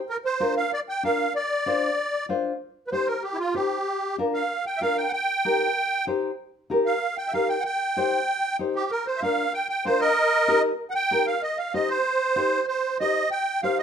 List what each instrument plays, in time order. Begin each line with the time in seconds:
0.10 accordion A#4
0.25 accordion C5
0.40 nylon-string guitar D4 F4 A#4
0.57 accordion F5
0.73 accordion D5
0.89 accordion G5
1.03 nylon-string guitar D4 F4 A#4, accordion F5
1.35 accordion D5
1.66 nylon-string guitar D4 F4 C5
2.29 nylon-string guitar D4 F4 C5
2.87 accordion B4
2.92 nylon-string guitar D#4 G4 C5, accordion C5
3.07 accordion A#4
3.23 accordion G4
3.34 accordion E4
3.39 accordion F4
3.54 nylon-string guitar D#4 G4 C5, accordion G4
4.18 nylon-string guitar D4 F4 A#4
4.34 accordion F5
4.66 accordion G5
4.77 nylon-string guitar D4, accordion E5
4.81 nylon-string guitar F4 A#4, accordion F5
4.98 accordion G5
5.09 accordion F#5
5.13 accordion G5
5.45 nylon-string guitar D#4 G4 A#4
6.07 nylon-string guitar D#4 G4 C5
6.70 nylon-string guitar D#4 G4 A#4
6.86 accordion F5
7.18 accordion G5
7.28 accordion E5
7.33 nylon-string guitar D#4 G4 A#4, accordion F5
7.49 accordion G5
7.60 accordion F#5
7.65 accordion G5
7.96 nylon-string guitar D#4 G4 C5
8.59 nylon-string guitar D#4 G4 C5
8.75 accordion G4
8.91 accordion A#4
9.07 accordion C5
9.17 accordion E5
9.22 nylon-string guitar D4 F4 A#4, accordion F5
9.54 accordion G5
9.69 accordion G5
9.85 nylon-string guitar D4 F4 A#4, accordion C5
10.00 accordion A#4 D#5
10.48 nylon-string guitar D#4 G4 A#4
10.91 accordion F#5
10.95 accordion G5
11.11 nylon-string guitar D#4 G4 A#4
11.27 accordion F5
11.43 accordion D#5
11.58 accordion F5
11.74 nylon-string guitar D#4 G4 C5, accordion D#5
11.89 accordion C5
12.36 nylon-string guitar D#4 G4 C5
12.68 accordion C5
13.00 nylon-string guitar D#4 G4 C5, accordion D#5
13.31 accordion G5
13.63 nylon-string guitar D#4 G4 C5, accordion F5
13.79 accordion D#5